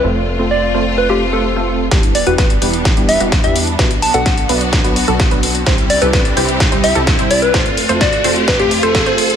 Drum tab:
HH |----------------|xxoxxxoxxxoxxxox|xxoxxxoxxxoxxxox|xxoxxxoxxxoxxxox|
SD |----------------|o---o---o---o---|o---o---o---o---|o---o---o---o---|
BD |----------------|o---o---o---o---|o---o---o---o---|o---o---o---o---|

HH |xxoxxxoxxxoxxxox|
SD |o---o---o---o---|
BD |o---o---o---o---|